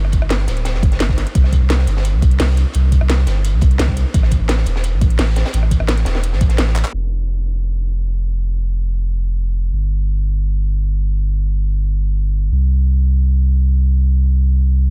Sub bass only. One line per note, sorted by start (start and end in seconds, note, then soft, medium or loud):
0.00 0.21 G1 medium
0.22 0.47 G1 medium
0.48 0.76 D1 medium
0.74 0.99 G1 medium
1.00 1.25 G1 medium
1.35 1.60 C2 medium
1.61 1.86 C2 medium
1.88 2.15 G1 medium
2.14 2.38 C2 medium
2.40 2.65 C2 medium
2.75 3.00 C2 medium
3.01 3.26 C2 medium
3.27 3.55 G1 medium
3.53 3.78 C2 medium
3.79 4.04 C2 medium
4.14 4.39 A1 medium
4.41 4.65 A1 medium
4.66 4.94 E1 medium
4.93 5.17 A1 medium
5.19 5.44 A1 medium
5.54 5.79 A1 loud
5.80 6.05 A1 medium
6.06 6.34 E1 medium
6.32 6.57 A1 medium
6.59 6.83 A1 medium
6.93 9.71 F1 medium
9.72 12.50 G1 medium
12.51 14.90 C2 medium